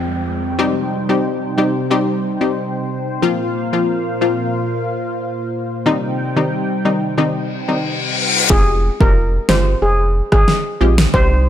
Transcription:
0.00 0.56 F2 medium
0.00 0.56 F3 medium
0.00 0.56 G#3 medium
0.00 0.56 C4 medium
0.00 3.19 G5 medium
0.00 downlifter medium
0.59 3.20 C3 medium
0.59 0.73 G3 loud
0.59 3.20 G3 medium
0.59 0.73 C4 medium
0.59 0.73 D#4 medium
0.59 3.20 D#4 medium
0.59 0.74 G4 loud
0.59 8.46 C5 medium
1.09 1.54 G3 medium
1.09 1.54 C4 medium
1.09 1.54 D#4 medium
1.09 1.54 G4 medium
1.58 1.88 G3 medium
1.58 1.88 C4 medium
1.58 1.88 D#4 medium
1.58 1.88 G4 medium
1.91 2.05 G3 medium
1.91 2.05 C4 medium
1.91 2.05 D#4 medium
1.91 2.05 G4 loud
2.41 2.54 G3 medium
2.41 2.54 C4 medium
2.41 2.54 D#4 medium
2.41 2.54 G4 medium
3.22 5.84 A#2 medium
3.22 3.37 F3 medium
3.22 3.37 A#3 medium
3.22 5.84 A#3 medium
3.22 3.37 C4 medium
3.22 5.84 F4 medium
3.22 3.37 F4 loud
3.22 5.84 F5 medium
3.73 4.18 F3 medium
3.73 4.18 A#3 medium
3.73 4.18 C4 medium
3.73 4.18 F4 medium
4.21 4.52 F3 medium
4.21 4.52 A#3 medium
4.21 4.52 C4 medium
4.21 4.52 F4 medium
5.86 8.48 C3 medium
5.86 6.01 D#3 medium
5.86 6.01 G3 medium
5.86 8.47 G3 medium
5.86 6.01 C4 medium
5.86 8.47 D#4 medium
5.86 6.01 D#4 loud
5.86 8.47 G5 medium
6.36 6.81 D#3 medium
6.36 6.81 G3 medium
6.36 6.81 C4 medium
6.36 6.82 D#4 medium
6.85 7.16 D#3 medium
6.85 7.16 G3 medium
6.85 7.16 C4 medium
6.85 7.16 D#4 medium
7.18 7.32 D#3 medium
7.18 7.33 G3 medium
7.18 7.33 C4 medium
7.18 7.33 D#4 loud
7.18 reverse cymbal medium
7.68 7.81 D#3 medium
7.68 7.81 G3 medium
7.68 7.82 C4 medium
7.68 7.82 D#4 medium
8.50 8.90 F1 loud
8.50 8.64 G#3 loud
8.50 8.64 C4 medium
8.50 8.65 F4 medium
8.50 8.65 G4 loud
8.50 8.74 G#4 medium
8.50 kick loud
9.00 9.39 F1 medium
9.00 9.13 G#3 medium
9.00 9.13 C4 medium
9.00 9.13 F4 medium
9.00 9.14 G4 medium
9.00 9.12 A#4 medium
9.00 kick loud
9.49 9.75 G1 loud
9.49 9.63 G#3 medium
9.49 9.63 C4 medium
9.49 9.64 F4 medium
9.49 9.64 G4 medium
9.49 9.62 C5 medium
9.49 snare loud
9.82 10.22 F1 medium
9.82 9.95 G#4 medium
10.32 10.45 G#1 medium
10.32 10.44 G#4 medium
10.32 kick medium
10.32 cross-stick medium
10.48 snare medium
10.81 11.07 A#1 medium
10.81 10.95 G#3 medium
10.81 10.95 C4 medium
10.81 10.95 F4 medium
10.81 10.96 G4 medium
10.98 snare loud
11.14 11.49 C2 loud
11.14 11.49 G3 loud
11.14 11.49 C4 medium
11.14 11.49 D#4 medium
11.14 11.49 G4 loud
11.14 11.38 C5 loud
11.14 kick loud

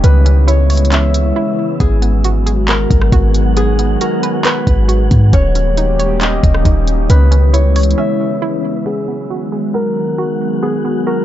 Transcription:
0.00 1.32 C#2 loud
0.00 1.79 E3 medium
0.00 1.79 G#3 medium
0.00 1.77 C#4 medium
0.00 0.24 C#4 medium
0.00 1.79 E4 loud
0.00 2.09 B4 loud
0.00 1.79 B4 medium
0.00 0.19 C#5 loud
0.00 0.98 D#5 medium
0.00 1.78 E5 medium
0.00 closed hi-hat medium
0.04 1.79 C#3 medium
0.04 5.29 B3 medium
0.26 0.91 C#4 medium
0.26 closed hi-hat medium
0.47 1.35 E4 medium
0.47 2.39 C#5 medium
0.47 closed hi-hat medium
0.70 1.80 C#5 medium
0.70 closed hi-hat medium
0.70 open hi-hat medium
0.77 closed hi-hat medium
0.85 closed hi-hat soft
0.92 1.80 C#4 medium
0.92 2.64 E5 medium
0.92 clap loud
0.92 closed hi-hat medium
1.14 closed hi-hat medium
1.36 1.80 E4 medium
1.80 2.87 G#1 loud
1.80 7.06 D#3 medium
1.80 5.30 F#3 medium
1.80 5.30 G#3 medium
1.80 2.01 B3 medium
1.80 5.30 B3 medium
1.80 5.30 F#4 medium
1.80 3.56 G#4 loud
1.80 5.30 G#4 medium
1.80 5.30 F#5 medium
1.80 kick loud
1.80 closed hi-hat medium
2.02 2.67 B3 medium
2.02 closed hi-hat medium
2.24 3.11 F#4 medium
2.24 closed hi-hat medium
2.46 3.79 G#4 medium
2.46 closed hi-hat medium
2.68 3.56 B3 medium
2.68 4.00 A#4 medium
2.68 clap loud
2.68 closed hi-hat medium
2.90 3.12 G#1 loud
2.90 kick loud
2.90 closed hi-hat medium
3.01 cross-stick medium
3.12 3.97 G#1 loud
3.12 4.00 F#4 medium
3.12 kick medium
3.12 closed hi-hat medium
3.34 closed hi-hat medium
3.57 3.78 B3 loud
3.57 5.84 G#4 loud
3.57 closed hi-hat medium
3.79 4.44 B3 medium
3.79 closed hi-hat medium
4.01 4.87 F#4 medium
4.01 4.51 A#4 medium
4.01 closed hi-hat medium
4.23 5.33 B4 medium
4.23 closed hi-hat medium
4.45 5.33 B3 medium
4.45 6.50 B4 medium
4.45 clap loud
4.45 closed hi-hat medium
4.67 5.09 G#1 loud
4.67 kick loud
4.67 closed hi-hat medium
4.88 5.33 F#4 medium
4.88 closed hi-hat medium
5.11 5.32 G#2 loud
5.11 kick loud
5.11 closed hi-hat medium
5.33 6.40 D#1 loud
5.33 7.08 G3 medium
5.33 7.08 A#3 medium
5.33 7.08 C#4 medium
5.33 5.54 C#4 medium
5.33 8.83 C#4 medium
5.33 7.08 G4 medium
5.33 7.25 C#5 loud
5.33 7.08 D#5 medium
5.33 kick loud
5.33 closed hi-hat medium
5.55 6.20 C#4 medium
5.55 closed hi-hat medium
5.77 6.64 D#4 medium
5.77 closed hi-hat medium
5.99 7.10 C#5 medium
5.99 closed hi-hat medium
6.21 7.09 C#4 medium
6.21 8.04 D#5 medium
6.21 clap loud
6.21 closed hi-hat medium
6.43 6.65 D#1 loud
6.43 kick loud
6.43 closed hi-hat medium
6.54 cross-stick medium
6.65 7.08 D#1 loud
6.65 7.10 D#4 medium
6.65 kick medium
6.65 closed hi-hat medium
6.87 closed hi-hat medium
7.10 7.94 C#2 loud
7.10 8.84 C#3 medium
7.10 8.84 E3 medium
7.10 8.84 G#3 medium
7.10 8.84 B3 medium
7.10 7.30 C#4 medium
7.10 8.84 E4 loud
7.10 8.84 B4 medium
7.10 9.15 B4 loud
7.10 8.84 E5 medium
7.10 closed hi-hat medium
7.31 7.97 C#4 medium
7.31 closed hi-hat medium
7.53 8.41 E4 medium
7.53 9.44 C#5 medium
7.53 closed hi-hat medium
7.76 8.86 C#5 medium
7.76 closed hi-hat medium
7.76 open hi-hat medium
7.83 closed hi-hat medium
7.91 closed hi-hat soft
7.98 8.86 C#4 medium
7.98 9.70 E5 medium
8.42 8.86 E4 medium
8.86 11.25 D#3 medium
8.86 11.25 F#3 medium
8.86 11.25 G#3 medium
8.86 9.07 B3 medium
8.86 11.25 B3 medium
8.86 11.25 F#4 medium
8.86 11.25 G#4 medium
8.86 10.62 G#4 medium
8.86 11.25 F#5 medium
9.08 9.73 B3 medium
9.30 10.17 F#4 medium
9.52 10.85 G#4 medium
9.74 10.61 B3 medium
9.74 11.06 A#4 medium
10.18 11.06 F#4 medium
10.62 10.84 B3 medium
10.62 11.25 G#4 medium
10.85 11.25 B3 medium
11.07 11.25 F#4 medium
11.07 11.25 A#4 medium

